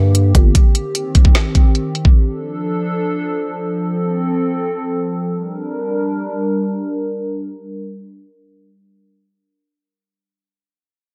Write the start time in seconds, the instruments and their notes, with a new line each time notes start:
Already playing: 808-style bass G2, analog synth pad D3 A#3 G4
0.15 closed hi-hat
0.35 808-style bass G1, kick, closed hi-hat
0.55 analog synth pad D#3 C4, kick, closed hi-hat
0.75 closed hi-hat
0.95 closed hi-hat
1.15 kick, closed hi-hat
1.25 kick
1.35 snare, closed hi-hat
1.55 kick, closed hi-hat
1.75 closed hi-hat
1.95 closed hi-hat
2.05 kick
2.15 analog synth pad F3 D4 A4
3.75 analog synth pad C4 A4
5.35 analog synth pad G3 D4 A#4